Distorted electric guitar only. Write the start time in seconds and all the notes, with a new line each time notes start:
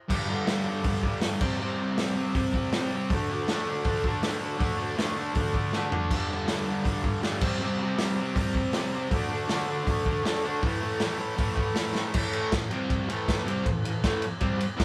0.09 G2 D3 G3
0.27 D3 G3
0.46 G2 D3 G3
0.65 D3 G3
0.83 G2 D3 G3
1.03 D3 G3
1.21 G2 D3
1.25 G3
1.40 C3 G3 C4
1.57 C3 G3 C4
1.77 G3 C4
1.94 C3 G3 C4
2.13 G3 C4
2.33 C3 G3 C4
2.52 G3 C4
2.73 C3 G3
2.78 C4
2.92 G3 C4
3.11 D3 A3 D4
3.30 A3 D4
3.48 D3 A3 D4
3.66 A3 D4
3.85 D3 A3 D4
4.05 A3 D4
4.22 D3 A3
4.26 D4
4.40 A3 D4
4.57 D3 A3 D4
4.77 A3 D4
4.96 D3 A3 D4
5.16 A3 D4
5.34 D3 A3 D4
5.53 A3 D4
5.73 D3 A3 D4
5.91 A3 D4
6.10 G2 D3 G3
6.29 D3 G3
6.46 G2 D3 G3
6.66 D3 G3
6.85 G2 D3 G3
7.03 D3 G3
7.21 G2 D3 G3
7.41 C3 G3 C4
7.59 C3 G3
7.63 C4
7.78 C4
7.82 G3
7.97 C3 G3 C4
8.17 G3 C4
8.35 C3 G3 C4
8.53 G3 C4
8.73 C3 G3 C4
8.92 G3 C4
9.10 D3 A3 D4
9.30 A3 D4
9.49 D3 A3 D4
9.67 A3 D4
9.85 D3 A3 D4
10.06 A3 D4
10.24 D3 A3 D4
10.43 A3 D4
10.62 A2 E3 A3
10.80 E3 A3
10.99 A2 E3 A3
11.18 E3 A3
11.36 A2 E3 A3
11.55 E3 A3
11.74 A2 E3 A3
11.93 E3 A3
12.13 A2 E3 A3
12.52 A2 E3
12.70 C3 G3 C4
13.08 A2 E3 A3
13.44 C3 G3 C4
13.64 A2 E3
13.84 A2 E3
14.03 A2 E3 A3
14.23 muted distorted electric guitar stroke
14.40 C3 G3 C4
14.59 muted distorted electric guitar stroke
14.77 E3 B3 E4